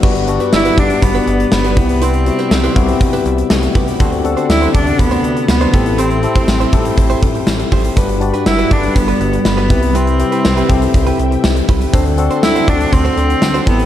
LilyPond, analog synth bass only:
\new Staff \with { instrumentName = "Analog synth bass" } { \clef bass \time 4/4 \key g \major \tempo 4 = 121 g,,4 g,,8 g,,8 g,,8 g,,8 g,,8 c,8~ | c,4 c,8 c,8 c,8 c,8 c,8 c,8 | d,4 d,8 d,8 d,8 d,8 d,8 a,,8~ | a,,4 a,,8 a,,8 a,,8 a,,8 a,,8 a,,8 |
g,,4 g,,8 g,,8 g,,8 g,,8 g,,8 c,8~ | c,4 c,8 c,8 c,8 c,8 c,8 c,8 | d,4 d,8 d,8 d,8 d,8 d,8 a,,8 | }